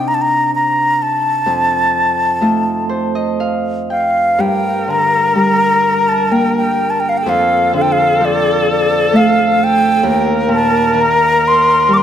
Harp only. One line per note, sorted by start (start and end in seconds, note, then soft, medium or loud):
0.00 1.51 C3 medium
0.00 0.22 A3 soft
0.00 2.59 C4 soft
0.00 2.40 D4 soft
0.00 2.31 D#4 soft
1.46 4.44 F2 soft
2.41 5.74 A3 soft
2.41 4.94 D#4 soft
2.41 4.94 F4 soft
2.89 4.87 C5 soft
3.15 4.94 D#5 soft
3.40 5.06 F5 soft
3.90 5.45 G5 soft
4.38 7.31 G2 medium
4.88 7.31 D3 soft
5.35 7.31 G3 soft
6.31 9.19 A#3 soft
7.26 10.10 F2 medium
7.73 10.10 D3 soft
8.20 10.10 F3 soft
9.13 10.55 A3 soft
10.03 12.03 D#2 medium
10.49 11.01 A#2 soft
10.94 12.03 D#3 medium
11.88 12.03 G3 soft